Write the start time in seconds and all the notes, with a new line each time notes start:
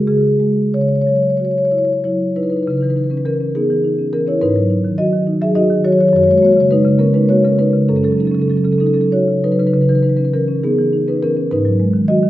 Already playing: F#2 G#3
0.07 C#3 G#4
0.40 G#3
0.74 C#3 C#5
0.81 C#5
0.88 C#5
0.95 C#5
1.01 C#5
1.07 F#3 C#5
1.16 C#5
1.23 C#5
1.30 C#5
1.37 F#4 C#5
1.45 C#5
1.51 C#5
1.58 C#5
1.65 C#5
1.71 E4 C#5
1.78 C#5
1.85 C#5
1.93 C#5
2.04 F#3 E4 C#5
2.36 D#4 E4 B4
2.43 D#4 B4
2.50 D#4 B4
2.56 D#4 B4
2.63 D#4 B4
2.67 C#3 B4
2.74 D#4 B4
2.81 E3 D#4 B4
2.89 D#4 B4
2.96 D#4 B4
3.04 B4
3.10 C#4 B4
3.17 B4
3.25 E3 C#4 A#4
3.40 C#4
3.55 B3 D#4 G#4
3.70 E3
3.84 D#4
3.99 C#4
4.13 E3 C#4 A#4
4.27 C#4 E4 C#5
4.41 G#2 D#4 B4
4.56 F#3
4.70 D#4
4.84 D#3
4.98 F#3 F#4 D#5
5.13 D#3
5.27 D#4
5.41 F#3 G#4 E5
5.55 D#4 F#4 D#5
5.70 D#3
5.84 F#3 F#4 C#5
5.92 F#4 C#5
5.99 D#3 F#4 C#5
6.08 F#4 C#5
6.13 F#2 F#4 C#5
6.23 F#4 C#5
6.28 G#3 F#4 C#5
6.38 F#4 C#5
6.42 A#3 C#5
6.46 F#4
6.52 F#4 C#5
6.57 C#3 C#5
6.62 F#4
6.71 G#3 D#4 B4
6.85 C#3
6.99 A#3 C#4 A#4
7.14 G#3 D#4 B4
7.29 A#3 F#4 C#5
7.44 C#3 C#4 A#4
7.59 G#3 D#4 B4
7.74 C#3
7.89 F#2 C#4 A4
7.96 C#4 A4
8.03 F#3 C#4 A4
8.11 C#4 A4
8.18 C#4 D#4 A4
8.25 C#4 A4
8.32 C#3 C#4 A4
8.40 C#4 A4
8.48 F#3 C#4 A4
8.56 C#4 A4
8.64 C#3 C#4 A4
8.71 C#4 A4
8.78 C#4 D#4 A4
8.86 C#4 A4
8.93 F#3 C#4 A4
9.01 C#4 A4
9.12 D#4 F#4 C#5
9.28 C#3
9.44 F#3 D#4 B4
9.52 D#4 B4
9.59 C#3 D#4 B4
9.67 D#4 B4
9.74 C#3 D#4 B4
9.81 D#4 B4
9.89 E3 D#4 B4
9.95 D#4 B4
10.03 D#4 B4
10.09 B4
10.17 C#4 B4
10.25 B4
10.34 E3 C#4 A#4
10.48 C#4
10.63 B3 D#4 G#4
10.78 E3
10.93 D#4
11.08 C#4 D#4 B4
11.23 E3 C#4 A#4
11.37 C#4
11.51 G#2 D#4 B4
11.65 F#3
11.80 G#3
11.94 D#3
12.08 F#3 F#4 D#5
12.23 D#3